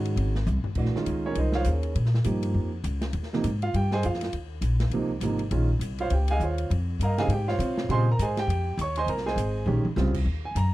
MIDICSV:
0, 0, Header, 1, 5, 480
1, 0, Start_track
1, 0, Tempo, 296736
1, 1250, Time_signature, 4, 2, 24, 8
1, 17371, End_track
2, 0, Start_track
2, 0, Title_t, "Grand piano"
2, 0, Program_c, 0, 0
2, 0, Note_on_c, 0, 51, 57
2, 0, Note_on_c, 0, 56, 52
2, 0, Note_on_c, 0, 61, 51
2, 0, Note_on_c, 0, 66, 67
2, 521, Note_off_c, 0, 51, 0
2, 524, Note_off_c, 0, 56, 0
2, 527, Note_off_c, 0, 61, 0
2, 529, Note_off_c, 0, 66, 0
2, 1249, Note_on_c, 0, 52, 60
2, 1253, Note_on_c, 0, 57, 49
2, 1257, Note_on_c, 0, 62, 52
2, 1271, Note_on_c, 0, 66, 58
2, 1509, Note_off_c, 0, 52, 0
2, 1511, Note_off_c, 0, 57, 0
2, 1513, Note_off_c, 0, 62, 0
2, 1520, Note_off_c, 0, 66, 0
2, 1541, Note_on_c, 0, 56, 59
2, 1543, Note_on_c, 0, 51, 64
2, 1551, Note_on_c, 0, 61, 58
2, 1555, Note_on_c, 0, 65, 68
2, 2010, Note_off_c, 0, 61, 0
2, 2034, Note_on_c, 0, 61, 68
2, 2039, Note_on_c, 0, 73, 89
2, 2041, Note_on_c, 0, 68, 66
2, 2043, Note_on_c, 0, 70, 71
2, 2213, Note_off_c, 0, 61, 0
2, 2215, Note_off_c, 0, 73, 0
2, 2216, Note_off_c, 0, 68, 0
2, 2218, Note_off_c, 0, 70, 0
2, 2238, Note_on_c, 0, 75, 74
2, 2242, Note_on_c, 0, 63, 53
2, 2248, Note_on_c, 0, 72, 62
2, 2249, Note_on_c, 0, 70, 57
2, 2495, Note_off_c, 0, 65, 0
2, 2498, Note_off_c, 0, 72, 0
2, 2504, Note_off_c, 0, 75, 0
2, 2506, Note_off_c, 0, 63, 0
2, 2510, Note_off_c, 0, 70, 0
2, 2511, Note_on_c, 0, 73, 76
2, 2511, Note_on_c, 0, 77, 92
2, 2519, Note_on_c, 0, 65, 74
2, 2523, Note_on_c, 0, 72, 74
2, 2576, Note_off_c, 0, 56, 0
2, 2577, Note_off_c, 0, 51, 0
2, 2669, Note_off_c, 0, 73, 0
2, 2691, Note_off_c, 0, 77, 0
2, 2695, Note_off_c, 0, 65, 0
2, 2697, Note_off_c, 0, 72, 0
2, 2707, Note_on_c, 0, 61, 42
2, 2710, Note_on_c, 0, 68, 44
2, 2719, Note_on_c, 0, 70, 43
2, 3146, Note_off_c, 0, 61, 0
2, 3147, Note_off_c, 0, 68, 0
2, 3152, Note_off_c, 0, 70, 0
2, 3634, Note_on_c, 0, 53, 65
2, 3641, Note_on_c, 0, 58, 55
2, 3649, Note_on_c, 0, 63, 54
2, 3649, Note_on_c, 0, 67, 59
2, 4353, Note_off_c, 0, 53, 0
2, 4356, Note_off_c, 0, 58, 0
2, 4360, Note_off_c, 0, 63, 0
2, 4360, Note_off_c, 0, 67, 0
2, 5399, Note_on_c, 0, 48, 75
2, 5400, Note_on_c, 0, 58, 74
2, 5406, Note_on_c, 0, 53, 69
2, 5411, Note_on_c, 0, 63, 81
2, 5562, Note_off_c, 0, 48, 0
2, 5562, Note_off_c, 0, 58, 0
2, 5565, Note_off_c, 0, 53, 0
2, 5567, Note_off_c, 0, 63, 0
2, 5869, Note_on_c, 0, 77, 91
2, 5876, Note_on_c, 0, 65, 73
2, 6050, Note_off_c, 0, 77, 0
2, 6053, Note_off_c, 0, 65, 0
2, 6078, Note_on_c, 0, 79, 83
2, 6086, Note_on_c, 0, 67, 64
2, 6344, Note_off_c, 0, 79, 0
2, 6348, Note_off_c, 0, 67, 0
2, 6355, Note_on_c, 0, 80, 102
2, 6364, Note_on_c, 0, 72, 90
2, 6367, Note_on_c, 0, 75, 73
2, 6371, Note_on_c, 0, 68, 81
2, 6533, Note_off_c, 0, 80, 0
2, 6538, Note_off_c, 0, 72, 0
2, 6539, Note_off_c, 0, 75, 0
2, 6542, Note_off_c, 0, 68, 0
2, 6560, Note_on_c, 0, 77, 70
2, 6562, Note_on_c, 0, 65, 64
2, 6992, Note_off_c, 0, 77, 0
2, 6994, Note_off_c, 0, 65, 0
2, 7977, Note_on_c, 0, 48, 72
2, 7984, Note_on_c, 0, 58, 62
2, 7990, Note_on_c, 0, 53, 62
2, 7999, Note_on_c, 0, 63, 74
2, 8233, Note_off_c, 0, 48, 0
2, 8236, Note_off_c, 0, 58, 0
2, 8240, Note_off_c, 0, 53, 0
2, 8244, Note_off_c, 0, 63, 0
2, 8455, Note_on_c, 0, 53, 60
2, 8458, Note_on_c, 0, 48, 65
2, 8465, Note_on_c, 0, 58, 61
2, 8469, Note_on_c, 0, 63, 68
2, 8712, Note_off_c, 0, 53, 0
2, 8714, Note_off_c, 0, 48, 0
2, 8717, Note_off_c, 0, 58, 0
2, 8719, Note_off_c, 0, 63, 0
2, 8920, Note_on_c, 0, 51, 63
2, 8924, Note_on_c, 0, 56, 60
2, 8931, Note_on_c, 0, 61, 57
2, 8934, Note_on_c, 0, 65, 69
2, 9185, Note_off_c, 0, 51, 0
2, 9187, Note_off_c, 0, 56, 0
2, 9190, Note_off_c, 0, 61, 0
2, 9192, Note_off_c, 0, 65, 0
2, 9709, Note_on_c, 0, 65, 70
2, 9719, Note_on_c, 0, 77, 88
2, 9721, Note_on_c, 0, 73, 68
2, 9729, Note_on_c, 0, 72, 78
2, 9890, Note_off_c, 0, 65, 0
2, 9896, Note_off_c, 0, 73, 0
2, 9896, Note_off_c, 0, 77, 0
2, 9900, Note_off_c, 0, 72, 0
2, 9914, Note_on_c, 0, 79, 67
2, 9933, Note_on_c, 0, 67, 55
2, 10182, Note_off_c, 0, 79, 0
2, 10192, Note_off_c, 0, 67, 0
2, 10199, Note_on_c, 0, 80, 112
2, 10206, Note_on_c, 0, 77, 89
2, 10220, Note_on_c, 0, 68, 76
2, 10220, Note_on_c, 0, 75, 80
2, 10373, Note_off_c, 0, 77, 0
2, 10375, Note_off_c, 0, 80, 0
2, 10386, Note_off_c, 0, 68, 0
2, 10386, Note_off_c, 0, 75, 0
2, 10401, Note_on_c, 0, 65, 57
2, 10404, Note_on_c, 0, 72, 56
2, 10405, Note_on_c, 0, 73, 59
2, 10833, Note_off_c, 0, 65, 0
2, 10835, Note_off_c, 0, 72, 0
2, 10836, Note_off_c, 0, 73, 0
2, 11368, Note_on_c, 0, 82, 86
2, 11378, Note_on_c, 0, 70, 75
2, 11391, Note_on_c, 0, 75, 71
2, 11393, Note_on_c, 0, 77, 69
2, 11603, Note_off_c, 0, 77, 0
2, 11612, Note_on_c, 0, 49, 56
2, 11616, Note_off_c, 0, 75, 0
2, 11621, Note_on_c, 0, 55, 53
2, 11625, Note_on_c, 0, 80, 109
2, 11626, Note_on_c, 0, 60, 54
2, 11627, Note_on_c, 0, 77, 78
2, 11629, Note_off_c, 0, 82, 0
2, 11632, Note_on_c, 0, 63, 65
2, 11635, Note_off_c, 0, 70, 0
2, 11641, Note_on_c, 0, 75, 86
2, 11643, Note_on_c, 0, 68, 80
2, 11788, Note_off_c, 0, 49, 0
2, 11793, Note_off_c, 0, 55, 0
2, 11795, Note_off_c, 0, 60, 0
2, 11798, Note_off_c, 0, 63, 0
2, 11808, Note_off_c, 0, 80, 0
2, 11809, Note_off_c, 0, 77, 0
2, 11816, Note_off_c, 0, 75, 0
2, 11818, Note_off_c, 0, 68, 0
2, 11838, Note_on_c, 0, 79, 81
2, 11859, Note_on_c, 0, 67, 71
2, 12101, Note_on_c, 0, 77, 86
2, 12103, Note_on_c, 0, 65, 75
2, 12104, Note_off_c, 0, 79, 0
2, 12104, Note_on_c, 0, 72, 75
2, 12106, Note_on_c, 0, 73, 74
2, 12115, Note_off_c, 0, 67, 0
2, 12725, Note_off_c, 0, 77, 0
2, 12726, Note_off_c, 0, 65, 0
2, 12727, Note_off_c, 0, 72, 0
2, 12728, Note_off_c, 0, 73, 0
2, 12763, Note_on_c, 0, 49, 73
2, 12769, Note_on_c, 0, 55, 67
2, 12776, Note_on_c, 0, 60, 72
2, 12783, Note_on_c, 0, 65, 78
2, 12799, Note_on_c, 0, 72, 82
2, 12799, Note_on_c, 0, 80, 85
2, 12802, Note_on_c, 0, 84, 111
2, 12806, Note_on_c, 0, 75, 82
2, 13026, Note_off_c, 0, 49, 0
2, 13030, Note_off_c, 0, 55, 0
2, 13033, Note_off_c, 0, 60, 0
2, 13037, Note_off_c, 0, 65, 0
2, 13065, Note_off_c, 0, 72, 0
2, 13065, Note_off_c, 0, 80, 0
2, 13066, Note_off_c, 0, 84, 0
2, 13069, Note_off_c, 0, 75, 0
2, 13128, Note_on_c, 0, 82, 94
2, 13130, Note_on_c, 0, 70, 72
2, 13281, Note_off_c, 0, 82, 0
2, 13282, Note_off_c, 0, 70, 0
2, 13297, Note_on_c, 0, 80, 88
2, 13298, Note_on_c, 0, 75, 67
2, 13302, Note_on_c, 0, 68, 77
2, 13306, Note_on_c, 0, 72, 71
2, 13555, Note_off_c, 0, 75, 0
2, 13555, Note_off_c, 0, 80, 0
2, 13557, Note_off_c, 0, 68, 0
2, 13559, Note_off_c, 0, 72, 0
2, 13567, Note_on_c, 0, 67, 83
2, 13575, Note_on_c, 0, 79, 100
2, 14179, Note_off_c, 0, 67, 0
2, 14183, Note_off_c, 0, 79, 0
2, 14258, Note_on_c, 0, 85, 102
2, 14278, Note_on_c, 0, 73, 75
2, 14515, Note_off_c, 0, 85, 0
2, 14520, Note_on_c, 0, 84, 107
2, 14525, Note_off_c, 0, 73, 0
2, 14525, Note_on_c, 0, 80, 90
2, 14537, Note_on_c, 0, 75, 84
2, 14541, Note_on_c, 0, 72, 88
2, 14696, Note_off_c, 0, 84, 0
2, 14698, Note_off_c, 0, 80, 0
2, 14702, Note_on_c, 0, 70, 73
2, 14704, Note_off_c, 0, 75, 0
2, 14707, Note_off_c, 0, 72, 0
2, 14711, Note_on_c, 0, 82, 87
2, 14976, Note_off_c, 0, 70, 0
2, 14979, Note_on_c, 0, 68, 83
2, 14981, Note_off_c, 0, 82, 0
2, 14984, Note_on_c, 0, 80, 90
2, 14988, Note_on_c, 0, 75, 76
2, 14989, Note_on_c, 0, 72, 76
2, 15604, Note_off_c, 0, 68, 0
2, 15606, Note_off_c, 0, 80, 0
2, 15608, Note_off_c, 0, 75, 0
2, 15609, Note_off_c, 0, 72, 0
2, 15635, Note_on_c, 0, 51, 74
2, 15643, Note_on_c, 0, 56, 66
2, 15646, Note_on_c, 0, 61, 61
2, 15648, Note_on_c, 0, 67, 82
2, 15902, Note_off_c, 0, 51, 0
2, 15906, Note_off_c, 0, 56, 0
2, 15907, Note_off_c, 0, 61, 0
2, 15908, Note_off_c, 0, 67, 0
2, 16121, Note_on_c, 0, 55, 63
2, 16123, Note_on_c, 0, 49, 71
2, 16127, Note_on_c, 0, 60, 65
2, 16137, Note_on_c, 0, 65, 74
2, 16385, Note_off_c, 0, 55, 0
2, 16386, Note_off_c, 0, 49, 0
2, 16388, Note_off_c, 0, 60, 0
2, 16393, Note_off_c, 0, 65, 0
2, 16909, Note_on_c, 0, 80, 89
2, 17090, Note_off_c, 0, 80, 0
2, 17097, Note_on_c, 0, 82, 105
2, 17371, Note_off_c, 0, 82, 0
2, 17371, End_track
3, 0, Start_track
3, 0, Title_t, "Upright bass"
3, 0, Program_c, 1, 32
3, 0, Note_on_c, 1, 44, 98
3, 250, Note_off_c, 1, 44, 0
3, 260, Note_on_c, 1, 32, 85
3, 740, Note_off_c, 1, 32, 0
3, 753, Note_on_c, 1, 36, 99
3, 1029, Note_off_c, 1, 36, 0
3, 1218, Note_on_c, 1, 34, 74
3, 1501, Note_off_c, 1, 34, 0
3, 1720, Note_on_c, 1, 37, 78
3, 2185, Note_off_c, 1, 37, 0
3, 2195, Note_on_c, 1, 36, 74
3, 2668, Note_off_c, 1, 36, 0
3, 2675, Note_on_c, 1, 39, 93
3, 3148, Note_off_c, 1, 39, 0
3, 3159, Note_on_c, 1, 46, 83
3, 3630, Note_off_c, 1, 46, 0
3, 3640, Note_on_c, 1, 43, 85
3, 4098, Note_off_c, 1, 43, 0
3, 4108, Note_on_c, 1, 41, 78
3, 4578, Note_off_c, 1, 41, 0
3, 4588, Note_on_c, 1, 37, 98
3, 5052, Note_off_c, 1, 37, 0
3, 5062, Note_on_c, 1, 39, 90
3, 5541, Note_off_c, 1, 39, 0
3, 5560, Note_on_c, 1, 44, 92
3, 6031, Note_off_c, 1, 44, 0
3, 6047, Note_on_c, 1, 43, 84
3, 6514, Note_off_c, 1, 43, 0
3, 6544, Note_on_c, 1, 41, 93
3, 6987, Note_off_c, 1, 41, 0
3, 6997, Note_on_c, 1, 39, 78
3, 7452, Note_off_c, 1, 39, 0
3, 7462, Note_on_c, 1, 34, 86
3, 7917, Note_off_c, 1, 34, 0
3, 7927, Note_on_c, 1, 36, 73
3, 8407, Note_off_c, 1, 36, 0
3, 8417, Note_on_c, 1, 32, 83
3, 8899, Note_off_c, 1, 32, 0
3, 8912, Note_on_c, 1, 34, 86
3, 9363, Note_off_c, 1, 34, 0
3, 9373, Note_on_c, 1, 36, 78
3, 9857, Note_off_c, 1, 36, 0
3, 9873, Note_on_c, 1, 37, 82
3, 10337, Note_off_c, 1, 37, 0
3, 10347, Note_on_c, 1, 39, 90
3, 10824, Note_off_c, 1, 39, 0
3, 10840, Note_on_c, 1, 41, 91
3, 11301, Note_off_c, 1, 41, 0
3, 11310, Note_on_c, 1, 43, 78
3, 11769, Note_off_c, 1, 43, 0
3, 11778, Note_on_c, 1, 44, 89
3, 12260, Note_off_c, 1, 44, 0
3, 12270, Note_on_c, 1, 48, 103
3, 12746, Note_off_c, 1, 48, 0
3, 12758, Note_on_c, 1, 46, 84
3, 13230, Note_off_c, 1, 46, 0
3, 13245, Note_on_c, 1, 44, 84
3, 13698, Note_off_c, 1, 44, 0
3, 13708, Note_on_c, 1, 41, 82
3, 14185, Note_off_c, 1, 41, 0
3, 14194, Note_on_c, 1, 39, 96
3, 14653, Note_off_c, 1, 39, 0
3, 14662, Note_on_c, 1, 36, 80
3, 15127, Note_off_c, 1, 36, 0
3, 15137, Note_on_c, 1, 32, 83
3, 15610, Note_off_c, 1, 32, 0
3, 15620, Note_on_c, 1, 34, 88
3, 15902, Note_off_c, 1, 34, 0
3, 16113, Note_on_c, 1, 36, 102
3, 16577, Note_off_c, 1, 36, 0
3, 16587, Note_on_c, 1, 39, 85
3, 17063, Note_off_c, 1, 39, 0
3, 17070, Note_on_c, 1, 42, 87
3, 17371, Note_off_c, 1, 42, 0
3, 17371, End_track
4, 0, Start_track
4, 0, Title_t, "Muted upright bass strokes"
4, 1037, Note_on_c, 9, 29, 48
4, 1199, Note_off_c, 9, 29, 0
4, 1525, Note_on_c, 9, 29, 37
4, 1686, Note_off_c, 9, 29, 0
4, 15917, Note_on_c, 9, 29, 43
4, 16079, Note_off_c, 9, 29, 0
4, 17371, End_track
5, 0, Start_track
5, 0, Title_t, "Drums"
5, 87, Note_on_c, 9, 51, 51
5, 248, Note_off_c, 9, 51, 0
5, 278, Note_on_c, 9, 51, 67
5, 440, Note_off_c, 9, 51, 0
5, 569, Note_on_c, 9, 38, 37
5, 731, Note_off_c, 9, 38, 0
5, 750, Note_on_c, 9, 44, 57
5, 750, Note_on_c, 9, 47, 50
5, 912, Note_off_c, 9, 44, 0
5, 912, Note_off_c, 9, 47, 0
5, 1032, Note_on_c, 9, 43, 80
5, 1194, Note_off_c, 9, 43, 0
5, 1216, Note_on_c, 9, 49, 69
5, 1225, Note_on_c, 9, 36, 73
5, 1377, Note_off_c, 9, 49, 0
5, 1382, Note_on_c, 9, 38, 31
5, 1386, Note_off_c, 9, 36, 0
5, 1544, Note_off_c, 9, 38, 0
5, 1551, Note_on_c, 9, 38, 42
5, 1713, Note_off_c, 9, 38, 0
5, 1717, Note_on_c, 9, 44, 54
5, 1717, Note_on_c, 9, 51, 68
5, 1879, Note_off_c, 9, 44, 0
5, 1879, Note_off_c, 9, 51, 0
5, 2188, Note_on_c, 9, 51, 66
5, 2350, Note_off_c, 9, 51, 0
5, 2466, Note_on_c, 9, 38, 52
5, 2627, Note_off_c, 9, 38, 0
5, 2661, Note_on_c, 9, 44, 63
5, 2661, Note_on_c, 9, 51, 58
5, 2823, Note_off_c, 9, 44, 0
5, 2823, Note_off_c, 9, 51, 0
5, 2960, Note_on_c, 9, 51, 47
5, 3121, Note_off_c, 9, 51, 0
5, 3163, Note_on_c, 9, 51, 59
5, 3324, Note_off_c, 9, 51, 0
5, 3324, Note_on_c, 9, 38, 30
5, 3469, Note_off_c, 9, 38, 0
5, 3469, Note_on_c, 9, 38, 45
5, 3630, Note_on_c, 9, 44, 65
5, 3630, Note_on_c, 9, 51, 64
5, 3631, Note_off_c, 9, 38, 0
5, 3791, Note_off_c, 9, 44, 0
5, 3791, Note_off_c, 9, 51, 0
5, 3924, Note_on_c, 9, 51, 65
5, 4086, Note_off_c, 9, 51, 0
5, 4594, Note_on_c, 9, 44, 51
5, 4594, Note_on_c, 9, 51, 62
5, 4756, Note_off_c, 9, 44, 0
5, 4756, Note_off_c, 9, 51, 0
5, 4877, Note_on_c, 9, 38, 68
5, 4877, Note_on_c, 9, 51, 45
5, 5039, Note_off_c, 9, 38, 0
5, 5039, Note_off_c, 9, 51, 0
5, 5062, Note_on_c, 9, 51, 62
5, 5223, Note_on_c, 9, 38, 31
5, 5224, Note_off_c, 9, 51, 0
5, 5385, Note_off_c, 9, 38, 0
5, 5390, Note_on_c, 9, 38, 42
5, 5552, Note_off_c, 9, 38, 0
5, 5562, Note_on_c, 9, 44, 56
5, 5562, Note_on_c, 9, 51, 71
5, 5723, Note_off_c, 9, 44, 0
5, 5723, Note_off_c, 9, 51, 0
5, 5856, Note_on_c, 9, 51, 43
5, 6017, Note_off_c, 9, 51, 0
5, 6054, Note_on_c, 9, 51, 66
5, 6216, Note_off_c, 9, 51, 0
5, 6329, Note_on_c, 9, 38, 41
5, 6491, Note_off_c, 9, 38, 0
5, 6520, Note_on_c, 9, 44, 54
5, 6520, Note_on_c, 9, 51, 71
5, 6682, Note_off_c, 9, 44, 0
5, 6682, Note_off_c, 9, 51, 0
5, 6694, Note_on_c, 9, 38, 28
5, 6810, Note_on_c, 9, 51, 54
5, 6840, Note_off_c, 9, 38, 0
5, 6840, Note_on_c, 9, 38, 42
5, 6972, Note_off_c, 9, 51, 0
5, 7001, Note_on_c, 9, 51, 54
5, 7002, Note_off_c, 9, 38, 0
5, 7163, Note_off_c, 9, 51, 0
5, 7469, Note_on_c, 9, 44, 58
5, 7469, Note_on_c, 9, 51, 76
5, 7631, Note_off_c, 9, 44, 0
5, 7631, Note_off_c, 9, 51, 0
5, 7764, Note_on_c, 9, 38, 53
5, 7764, Note_on_c, 9, 51, 45
5, 7925, Note_off_c, 9, 38, 0
5, 7925, Note_off_c, 9, 51, 0
5, 7948, Note_on_c, 9, 51, 61
5, 8110, Note_off_c, 9, 51, 0
5, 8429, Note_on_c, 9, 44, 60
5, 8429, Note_on_c, 9, 51, 69
5, 8591, Note_off_c, 9, 44, 0
5, 8591, Note_off_c, 9, 51, 0
5, 8719, Note_on_c, 9, 51, 45
5, 8881, Note_off_c, 9, 51, 0
5, 8911, Note_on_c, 9, 51, 72
5, 9073, Note_off_c, 9, 51, 0
5, 9398, Note_on_c, 9, 44, 51
5, 9398, Note_on_c, 9, 51, 74
5, 9560, Note_off_c, 9, 44, 0
5, 9560, Note_off_c, 9, 51, 0
5, 9681, Note_on_c, 9, 51, 43
5, 9842, Note_off_c, 9, 51, 0
5, 9870, Note_on_c, 9, 51, 65
5, 10031, Note_off_c, 9, 51, 0
5, 10155, Note_on_c, 9, 51, 73
5, 10317, Note_off_c, 9, 51, 0
5, 10352, Note_on_c, 9, 44, 63
5, 10513, Note_off_c, 9, 44, 0
5, 10646, Note_on_c, 9, 51, 53
5, 10807, Note_off_c, 9, 51, 0
5, 10856, Note_on_c, 9, 51, 63
5, 11018, Note_off_c, 9, 51, 0
5, 11334, Note_on_c, 9, 44, 58
5, 11334, Note_on_c, 9, 51, 72
5, 11496, Note_off_c, 9, 44, 0
5, 11496, Note_off_c, 9, 51, 0
5, 11619, Note_on_c, 9, 38, 62
5, 11619, Note_on_c, 9, 51, 48
5, 11781, Note_off_c, 9, 38, 0
5, 11781, Note_off_c, 9, 51, 0
5, 11801, Note_on_c, 9, 51, 74
5, 11963, Note_off_c, 9, 51, 0
5, 12108, Note_on_c, 9, 38, 34
5, 12270, Note_off_c, 9, 38, 0
5, 12294, Note_on_c, 9, 44, 52
5, 12294, Note_on_c, 9, 51, 71
5, 12456, Note_off_c, 9, 44, 0
5, 12456, Note_off_c, 9, 51, 0
5, 12579, Note_on_c, 9, 38, 66
5, 12741, Note_off_c, 9, 38, 0
5, 12775, Note_on_c, 9, 51, 58
5, 12937, Note_off_c, 9, 51, 0
5, 13252, Note_on_c, 9, 44, 67
5, 13252, Note_on_c, 9, 51, 72
5, 13413, Note_off_c, 9, 44, 0
5, 13413, Note_off_c, 9, 51, 0
5, 13542, Note_on_c, 9, 38, 57
5, 13542, Note_on_c, 9, 51, 45
5, 13704, Note_off_c, 9, 38, 0
5, 13704, Note_off_c, 9, 51, 0
5, 13750, Note_on_c, 9, 51, 75
5, 13912, Note_off_c, 9, 51, 0
5, 14214, Note_on_c, 9, 44, 55
5, 14214, Note_on_c, 9, 51, 70
5, 14376, Note_off_c, 9, 44, 0
5, 14376, Note_off_c, 9, 51, 0
5, 14487, Note_on_c, 9, 51, 53
5, 14649, Note_off_c, 9, 51, 0
5, 14687, Note_on_c, 9, 51, 67
5, 14841, Note_on_c, 9, 38, 30
5, 14849, Note_off_c, 9, 51, 0
5, 15002, Note_off_c, 9, 38, 0
5, 15004, Note_on_c, 9, 38, 47
5, 15165, Note_off_c, 9, 38, 0
5, 15167, Note_on_c, 9, 44, 58
5, 15167, Note_on_c, 9, 51, 72
5, 15329, Note_off_c, 9, 44, 0
5, 15329, Note_off_c, 9, 51, 0
5, 15650, Note_on_c, 9, 47, 58
5, 15812, Note_off_c, 9, 47, 0
5, 15930, Note_on_c, 9, 47, 71
5, 16092, Note_off_c, 9, 47, 0
5, 16130, Note_on_c, 9, 38, 58
5, 16130, Note_on_c, 9, 44, 54
5, 16291, Note_off_c, 9, 38, 0
5, 16291, Note_off_c, 9, 44, 0
5, 16407, Note_on_c, 9, 36, 81
5, 16409, Note_on_c, 9, 49, 88
5, 16569, Note_off_c, 9, 36, 0
5, 16571, Note_off_c, 9, 49, 0
5, 17078, Note_on_c, 9, 44, 61
5, 17078, Note_on_c, 9, 51, 68
5, 17240, Note_off_c, 9, 44, 0
5, 17240, Note_off_c, 9, 51, 0
5, 17371, End_track
0, 0, End_of_file